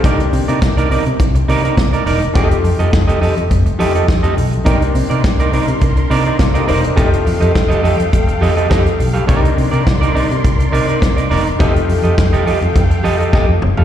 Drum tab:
HH |xxoxxxoxxxoxxxox|xxoxxxoxxxoxxxox|xxoxxxoxxxoxxxox|xxoxxxoxxxoxxxox|
SD |----o-------o---|----o-------o---|----o-------o---|----o-------o---|
T2 |----------------|----------------|----------------|----------------|
FT |----------------|----------------|----------------|----------------|
BD |o---o---o---o---|o---o---o---o---|o---o---o---o---|o---o---o---o---|

HH |xxoxxxoxxxoxxxox|xxoxxxoxxxox----|
SD |----o-------o---|----o-------o---|
T2 |----------------|--------------o-|
FT |----------------|---------------o|
BD |o---o---o---o---|o---o---o---o---|